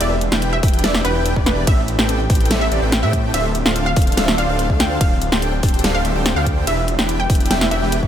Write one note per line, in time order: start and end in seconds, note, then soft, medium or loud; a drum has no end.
0.01 0.30 E1 medium
0.01 1.66 E3 medium
0.01 1.66 B3 medium
0.01 1.66 D4 medium
0.01 0.14 D4 medium
0.01 0.14 E4 medium
0.01 3.31 G4 medium
0.01 0.14 G4 medium
0.01 0.14 B4 medium
0.01 0.25 D5 loud
0.01 0.14 E5 medium
0.01 closed hi-hat medium
0.01 ride soft
0.21 closed hi-hat medium
0.32 0.61 E1 loud
0.32 0.54 D4 medium
0.32 0.54 E4 medium
0.32 0.54 G4 medium
0.32 0.54 B4 medium
0.32 0.54 G5 loud
0.32 0.54 G5 medium
0.32 snare medium
0.42 closed hi-hat medium
0.53 0.77 E5 loud
0.63 0.82 E1 medium
0.63 0.82 D4 loud
0.63 0.82 E4 loud
0.63 0.82 G4 medium
0.63 0.82 B4 medium
0.63 0.82 G5 loud
0.63 kick loud
0.63 open hi-hat medium
0.68 closed hi-hat medium
0.74 closed hi-hat soft
0.79 closed hi-hat medium
0.84 1.03 E1 medium
0.84 1.02 D4 loud
0.84 1.02 E4 medium
0.84 1.02 G4 medium
0.84 1.02 B4 medium
0.84 1.00 D5 medium
0.84 1.02 E5 loud
0.84 snare loud
0.84 closed hi-hat medium
0.84 ride soft
0.94 snare medium
1.05 1.34 E1 medium
1.05 1.34 D4 medium
1.05 1.34 E4 medium
1.05 1.34 G4 medium
1.05 1.37 B4 loud
1.05 1.34 B4 medium
1.05 1.34 G5 loud
1.05 1.34 G5 medium
1.05 closed hi-hat medium
1.26 closed hi-hat medium
1.36 1.65 E1 loud
1.36 1.65 D4 medium
1.36 1.65 E4 medium
1.36 1.65 G4 medium
1.36 1.65 B4 medium
1.36 1.65 D5 medium
1.36 kick medium
1.46 1.63 B4 medium
1.46 snare medium
1.46 closed hi-hat medium
1.67 1.97 A1 loud
1.67 3.32 A3 medium
1.67 6.63 C4 medium
1.67 1.81 C4 medium
1.67 1.81 G4 medium
1.67 1.81 A4 medium
1.67 1.81 B4 medium
1.67 1.84 E5 loud
1.67 1.81 E5 medium
1.67 kick loud
1.67 closed hi-hat medium
1.67 ride medium
1.88 closed hi-hat medium
1.99 2.28 A1 loud
1.99 2.20 C4 medium
1.99 2.20 G4 medium
1.99 2.20 A4 medium
1.99 2.20 B4 medium
1.99 2.20 G5 medium
1.99 snare medium
2.09 closed hi-hat medium
2.30 2.49 A1 loud
2.30 2.48 C4 medium
2.30 2.48 G4 medium
2.30 2.48 A4 medium
2.30 2.48 B4 medium
2.30 2.48 G5 loud
2.30 kick loud
2.30 open hi-hat medium
2.35 closed hi-hat medium
2.41 closed hi-hat soft
2.46 closed hi-hat medium
2.51 2.70 A1 loud
2.51 2.69 C4 loud
2.51 2.69 G4 medium
2.51 2.69 A4 medium
2.51 2.69 B4 medium
2.51 2.69 E5 loud
2.51 snare loud
2.51 closed hi-hat medium
2.51 ride soft
2.61 2.94 E5 medium
2.71 2.80 A1 medium
2.71 2.81 C4 medium
2.71 2.81 G4 medium
2.71 2.81 A4 medium
2.71 2.81 B4 medium
2.71 2.81 D5 medium
2.71 closed hi-hat medium
2.82 3.05 A1 loud
2.82 3.00 C4 medium
2.82 3.00 G4 medium
2.82 3.00 A4 medium
2.82 3.00 B4 medium
2.82 3.00 G5 medium
2.92 snare medium
2.92 closed hi-hat medium
3.03 3.32 A2 loud
3.03 3.32 C4 medium
3.03 3.32 G4 medium
3.03 3.32 A4 medium
3.03 3.32 B4 medium
3.03 3.27 E5 loud
3.03 3.32 G5 medium
3.03 3.32 G5 loud
3.13 kick medium
3.13 closed hi-hat medium
3.34 3.63 D1 loud
3.34 4.99 D3 medium
3.34 4.99 D4 medium
3.34 3.48 D4 medium
3.34 6.64 F4 medium
3.34 3.48 F4 medium
3.34 3.48 A4 medium
3.34 3.48 C5 medium
3.34 3.58 E5 loud
3.34 3.48 E5 medium
3.34 closed hi-hat medium
3.34 ride soft
3.55 closed hi-hat medium
3.66 3.95 D1 loud
3.66 3.87 D4 medium
3.66 3.87 F4 medium
3.66 3.87 A4 medium
3.66 3.87 C5 medium
3.66 3.87 F5 medium
3.66 snare medium
3.76 closed hi-hat medium
3.86 4.10 F5 loud
3.96 4.15 D1 loud
3.96 4.15 D4 loud
3.96 4.15 F4 medium
3.96 4.15 A4 medium
3.96 4.15 C5 medium
3.96 4.15 F5 loud
3.96 kick loud
3.96 open hi-hat medium
4.02 closed hi-hat medium
4.07 closed hi-hat soft
4.12 closed hi-hat medium
4.17 4.36 D1 medium
4.17 4.36 D4 loud
4.17 4.36 F4 medium
4.17 4.36 A4 medium
4.17 4.36 C5 medium
4.17 4.36 E5 loud
4.17 4.34 F5 medium
4.17 snare loud
4.17 closed hi-hat medium
4.17 ride soft
4.28 snare medium
4.38 4.47 D1 loud
4.38 4.47 D4 medium
4.38 4.47 F4 medium
4.38 4.47 A4 medium
4.38 4.47 C5 medium
4.38 4.47 D5 medium
4.38 4.71 F5 loud
4.38 closed hi-hat medium
4.49 4.71 D1 loud
4.49 4.67 D4 medium
4.49 4.67 F4 medium
4.49 4.67 A4 medium
4.49 4.67 C5 medium
4.49 4.67 F5 medium
4.59 closed hi-hat medium
4.70 4.99 D2 loud
4.70 4.98 D4 medium
4.70 4.98 F4 medium
4.70 4.98 A4 medium
4.70 4.98 C5 medium
4.70 4.98 F5 loud
4.70 4.98 F5 medium
4.70 kick medium
4.80 4.96 G5 medium
4.80 snare medium
4.80 closed hi-hat medium
5.01 5.30 D1 loud
5.01 6.66 G3 medium
5.01 5.14 D4 medium
5.01 5.14 G4 medium
5.01 5.14 A4 medium
5.01 5.17 F5 loud
5.01 5.14 F5 medium
5.01 kick loud
5.01 closed hi-hat medium
5.01 ride soft
5.22 closed hi-hat medium
5.32 5.61 D1 loud
5.32 5.54 D4 medium
5.32 5.54 G4 medium
5.32 5.54 A4 medium
5.32 5.54 C5 medium
5.32 5.54 G5 medium
5.32 snare medium
5.42 closed hi-hat medium
5.63 5.82 D1 medium
5.63 5.82 D4 medium
5.63 5.82 G4 medium
5.63 5.82 A4 medium
5.63 5.82 C5 medium
5.63 5.82 G5 loud
5.63 kick loud
5.63 open hi-hat loud
5.69 closed hi-hat medium
5.74 closed hi-hat soft
5.79 closed hi-hat medium
5.84 6.03 D1 loud
5.84 6.02 D4 loud
5.84 6.02 G4 medium
5.84 6.02 A4 medium
5.84 6.02 C5 medium
5.84 6.02 F5 loud
5.84 snare loud
5.84 closed hi-hat medium
5.84 ride soft
5.95 6.27 F5 medium
6.05 6.13 D1 medium
6.05 6.14 D4 medium
6.05 6.14 G4 medium
6.05 6.14 A4 medium
6.05 6.14 C5 medium
6.05 6.14 E5 medium
6.05 closed hi-hat medium
6.15 6.34 D1 loud
6.15 6.33 D4 medium
6.15 6.33 G4 medium
6.15 6.33 A4 medium
6.15 6.33 C5 medium
6.15 6.33 G5 loud
6.15 6.33 G5 medium
6.26 snare medium
6.26 closed hi-hat medium
6.36 6.65 D2 loud
6.36 6.65 D4 medium
6.36 6.65 G4 medium
6.36 6.65 A4 medium
6.36 6.65 C5 medium
6.36 6.61 F5 medium
6.36 6.65 G5 medium
6.36 6.65 G5 loud
6.46 kick medium
6.46 closed hi-hat medium
6.67 6.96 E1 loud
6.67 8.07 E3 medium
6.67 8.07 B3 medium
6.67 8.07 D4 medium
6.67 6.81 D4 medium
6.67 6.81 E4 medium
6.67 8.07 G4 medium
6.67 6.81 G4 medium
6.67 6.81 B4 medium
6.67 6.81 E5 medium
6.67 6.92 E5 loud
6.67 closed hi-hat medium
6.67 ride soft
6.88 closed hi-hat medium
6.99 7.28 E1 loud
6.99 7.20 D4 medium
6.99 7.20 E4 medium
6.99 7.20 G4 medium
6.99 7.20 B4 medium
6.99 7.20 G5 medium
6.99 snare medium
7.09 closed hi-hat medium
7.20 7.44 G5 loud
7.30 7.49 E1 loud
7.30 7.48 D4 loud
7.30 7.48 E4 medium
7.30 7.48 G4 medium
7.30 7.48 B4 medium
7.30 7.48 G5 loud
7.30 kick loud
7.30 open hi-hat loud
7.35 closed hi-hat medium
7.40 closed hi-hat medium
7.46 closed hi-hat medium
7.50 7.69 E1 loud
7.50 7.69 D4 loud
7.50 7.69 E4 medium
7.50 7.69 G4 medium
7.50 7.69 B4 medium
7.50 7.69 E5 loud
7.50 7.67 G5 medium
7.50 snare loud
7.50 closed hi-hat medium
7.50 ride soft
7.61 snare medium
7.71 8.01 E1 medium
7.71 8.00 D4 medium
7.71 8.00 E4 medium
7.71 8.00 G4 medium
7.71 8.00 B4 medium
7.71 8.04 E5 loud
7.71 8.00 G5 medium
7.71 8.00 G5 loud
7.71 closed hi-hat medium
7.82 snare soft
7.92 closed hi-hat medium
8.03 8.07 E1 loud
8.03 8.07 D4 medium
8.03 8.07 E4 medium
8.03 8.07 G4 medium
8.03 8.07 B4 medium
8.03 8.07 D5 medium
8.03 kick medium